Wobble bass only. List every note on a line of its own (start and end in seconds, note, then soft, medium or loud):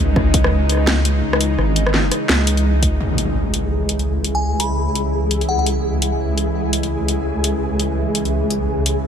0.00 0.15 C#2 loud
0.16 0.51 C#2 loud
0.52 1.22 C#2 medium
1.23 1.57 C#2 loud
1.58 2.10 G#1 medium
2.29 2.99 C#2 loud
3.00 8.67 C#2 medium
8.68 9.07 C#2 medium